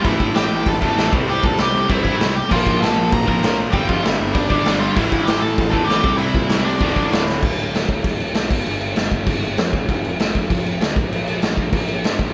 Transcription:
0.02 A1 A2 E3 A3 E4 E5, kick, open hi-hat
0.20 G2, kick
0.35 A1 G4 G5, snare, open hi-hat
0.52 A1
0.66 A1 A4 A5, kick, open hi-hat
0.81 E2 A2 E3 A3 A4 A5, kick
0.96 A1 A2 E3 A3, snare, open hi-hat
1.11 C2 C3 G3 C4, kick
1.28 C2 G4 G5, open hi-hat
1.43 A#2 A4 A5, kick
1.58 C2 G4 G5, snare, open hi-hat
1.74 C2
1.89 C2 C3 G3 C4 E4 E5, kick, open hi-hat
2.04 G2 C3 G3 C4 E4 E5, kick
2.20 C2, snare, open hi-hat
2.35 G4 G5
2.49 A#1 A#2 F3 A#3 F4 F5, kick, crash
2.67 G2, kick
2.81 A#1 A4 A5, snare, open hi-hat
2.96 A#1
3.12 A#1 A#4 A#5, kick, open hi-hat
3.26 F2 A#2 F3 A#3 A#4 A#5, kick
3.41 A#1 A#2 F3 A#3, snare, open hi-hat
3.71 G1 G2 D3 G3 G4 G5, kick, open hi-hat
3.88 F2 F4 F5, kick
4.03 G1 E4 E5, snare, open hi-hat
4.21 G1
4.34 G1 D4 D5, kick, open hi-hat
4.49 D2 D3 G3 D4 D5, kick
4.53 G2
4.65 G1 G2 D3 G3, snare, open hi-hat
4.80 F4 F5
4.96 A1 A2 E3 A3 E4 E5, kick, open hi-hat
5.12 G2, kick
5.25 A1 G4 G5, snare, open hi-hat
5.39 A1 A4 A5
5.58 A1, kick, open hi-hat
5.71 E2 A2 E3 A3 A4 A5, kick
5.84 A1 A2 G4 G5
5.88 E3 A3, snare, open hi-hat
6.03 C2 C3 G3 C4, kick
6.17 C2 E4 E5, open hi-hat
6.34 A#2, kick
6.49 C2, snare, open hi-hat
6.64 C2 D4 D5
6.79 D1 D2 A2 D3, kick, open hi-hat
6.96 A1, kick
7.12 D1, snare, open hi-hat
7.29 snare
7.42 D1, kick, crash
7.59 crash
7.74 D1, snare, crash
7.88 D1, kick, crash
8.04 D1, kick, crash
8.20 crash
8.34 C2, snare, crash
8.51 G1, kick, crash
8.66 G1, crash
8.81 crash
8.96 G1, snare, crash
9.11 G1, kick, crash
9.26 G1, kick, crash
9.43 crash
9.57 F2, snare, crash
9.73 E1, kick, crash
9.89 F1, kick, crash
10.05 crash
10.19 F1, snare, crash
10.35 F1, kick, crash
10.50 F1, kick, crash
10.66 crash
10.80 D2, snare, crash
10.96 A#1, kick, crash
11.11 A#1, crash
11.27 crash
11.42 A#1, snare, crash
11.57 A#1, kick, crash
11.72 A#1, kick, crash
11.88 crash
12.04 G2, snare, crash
12.19 A#1, kick, crash

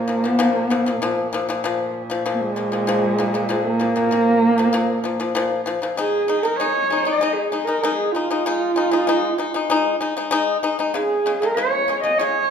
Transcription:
Already playing: A#2 A#3
0.08 A#2 F3
0.24 A#2 F3
0.30 B3
0.39 A#2 F3
0.48 A#3
0.69 A#2 F3 B3
0.86 A#2 F3 A#3
1.02 A#2 F3
1.33 A#2 F3
1.49 A#2 F3
1.64 A#2 F3
2.10 A#2 F3
2.26 A#2 F3
2.34 A#3
2.40 G#3
2.56 A#2 F3
2.72 A#2 F3
2.87 A#2 F3
3.19 A#2 F3
3.34 A#2 F3
3.49 A#2 F3
3.65 A#3
3.80 A#2 F3
3.96 A#2 F3
4.11 A#2 F3
4.58 A#2 F3
4.73 A#2 F3
5.04 A#2 F3
5.20 A#2 F3
5.35 A#2 F3
5.66 A#2 F3
5.82 A#2 F3
5.97 G#3 D#4 G#4
6.28 G#3 D#4
6.42 G#3 D#4 A#4
6.56 G#3 C#5
6.61 D#4
6.90 G#3 D#4
7.03 G#3 D#4 D#5
7.21 G#3 D#4
7.33 G#4
7.52 G#3 D#4
7.64 G#3 A#4
7.68 D#4
7.81 G#3 D#4 A#4
7.94 G#4
8.12 G#3 F4
8.16 D#4
8.31 G#3 D#4
8.46 G#3 D#4
8.76 G#3 D#4
8.91 G#3 D#4
9.07 G#3 D#4
9.38 G#3 D#4
9.54 G#3 D#4
9.70 G#3 D#4
10.01 G#3 D#4
10.17 G#3 D#4
10.31 G#3 D#4
10.63 G#3 D#4
10.79 G#3 D#4
10.94 C#3 G#3 G#4
11.26 C#3 G#3
11.40 C#3 G#3 A#4
11.54 C#3 G#3 C#5
11.88 C#3 G#3
12.03 C#3 G#3 D#5
12.18 C#3 G#3 C#5

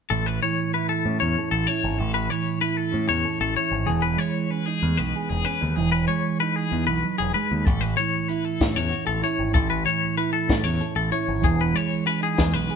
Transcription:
0.10 A1 A2 A4
0.26 B4
0.43 E3 C#5
0.74 E4 B4
0.89 A4
1.06 A2 C#4
1.20 E2 C#5
1.38 A4
1.51 A1 A4
1.67 E4 C#5
1.84 G#1
1.98 A1 A2 A4
2.14 B4
2.30 E3 C#5
2.61 E4 B4
2.77 A4
2.92 A2 C#4
3.09 E2 C#5
3.25 A4
3.41 A1 A4
3.57 E4 C#5
3.72 G#1
3.86 E1 E3 G#4
4.02 B4
4.17 G#3 C#5
4.50 C#4 B4
4.66 D#4 G#4
4.83 E2 A3
4.97 B1 B3 B4
5.16 G#4
5.29 E1 G#4
5.45 C#4 B4
5.61 D#2 D#4
5.76 E1 E3 G#4
5.92 B4
6.08 G#3 C#5
6.40 D#4 B4
6.56 G#4
6.71 E2 E3
6.87 B1 B4
7.03 F#3
7.18 E1 G#4
7.34 G#3 B4
7.52 D#2
7.65 A1 A2 A4, kick, closed hi-hat
7.81 B4
7.97 E3 C#5, closed hi-hat
8.28 E4 B4, closed hi-hat
8.45 A4
8.61 A2 C#4, kick, snare, closed hi-hat
8.76 E2 C#5
8.90 F#4, closed hi-hat
9.05 A1 A4
9.22 E4 C#5, closed hi-hat
9.39 G#1
9.53 A1 A2 A4, kick, closed hi-hat
9.70 B4
9.85 E3 C#5, closed hi-hat
10.17 E4 B4, closed hi-hat
10.33 A4
10.48 A2 C#4, kick, snare, closed hi-hat
10.64 E2 C#5
10.81 A4, closed hi-hat
10.96 A1 A4
11.11 E4 C#5, closed hi-hat
11.28 G#1
11.41 E1 E3 G#4, kick, closed hi-hat
11.61 B4
11.73 G#3 C#5, closed hi-hat
12.06 C#4 B4, closed hi-hat
12.21 D#4 G#4
12.38 E2 A3, kick, snare, closed hi-hat
12.54 B1 B3 B4
12.70 G#4, closed hi-hat

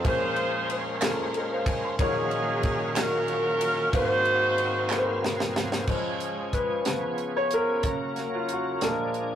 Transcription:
0.04 A#1 A#2 G#3 A#3 C#4 F4 G#4 A#4 C5, kick, ride
0.36 ride
0.70 ride
1.00 A#3 C#4 F4 G#4 A4, snare, clap, ride
1.09 A#4
1.34 A#4 D#5, ride
1.52 C5 F5
1.66 D#5 G#5, kick, ride
1.84 F5 C6
1.98 A#1 A#2 D#3 F#3 A#3 C#4 D#4 F4 F#4 G#4 C#5 F5, kick, ride
2.31 ride
2.63 kick, ride
2.96 A#3 C#4 D#4 F#4 G#4 A#4 F5, snare, clap, ride
3.28 ride
3.61 ride
3.92 G#1 G#2 F#3 A#3 B3 D#4 F#4 G#4 C5 F5, kick, ride
3.98 C4
4.25 ride
4.58 ride
4.90 A#3 F#4 G#4 B4 F5, snare, clap
4.98 C5
5.24 snare
5.40 snare
5.56 snare
5.72 snare
5.87 C#3 F3 G#3 C#4 F4 G#4, kick, crash
6.20 closed hi-hat
6.53 B4, kick, closed hi-hat
6.85 C#3 F3 B3 C#4 G#4, snare, closed hi-hat
7.18 closed hi-hat
7.36 C#5
7.51 A#4, closed hi-hat
7.83 C#3 F#3 A#3 C#4 F#4 A#4, kick, closed hi-hat
8.16 snare, closed hi-hat
8.35 F4
8.49 F#4, closed hi-hat
8.81 A#2 F3 G#3 A#3 D4 F4 G#4 A#4, snare, closed hi-hat
9.14 closed hi-hat

